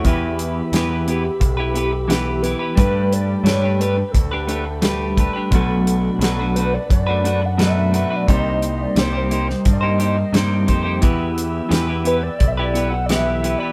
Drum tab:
HH |x-x-x-x-x-x-x-x-|x-x-x-x-x-x-x-x-|x-x-x-x-x-x-x-x-|x-x-x-x-x-x-x-x-|
SD |----o-------o---|----o-------o---|----o-------o---|----o--o----o---|
BD |o-------o-------|o-------o-----o-|o-------o-------|o-------o-----o-|

HH |x-x-x-x-x-x-x-x-|
SD |----o-------o---|
BD |o-------o-------|